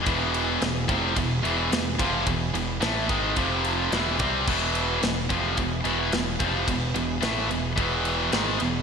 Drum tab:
CC |--------|--------|x-------|--------|
RD |xxxxxxxx|xxxxxxxx|-xxxxxxx|xxxxxxxx|
SD |--o---o-|--o---o-|--o---o-|--o---o-|
BD |o--oo--o|o--oo--o|o--oo--o|o---o---|